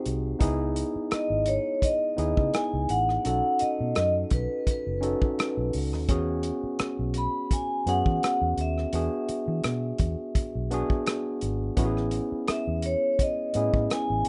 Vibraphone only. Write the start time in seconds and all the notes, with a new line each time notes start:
1.13 D#5
1.48 C#5
1.83 D#5
2.54 G#5
2.90 F#5
3.26 F#5
3.61 D#5
3.97 D#5
4.33 B4
4.71 B4
7.18 B5
7.53 G#5
7.89 F#5
8.61 E5
12.50 E5
12.86 C#5
13.22 D#5
13.93 G#5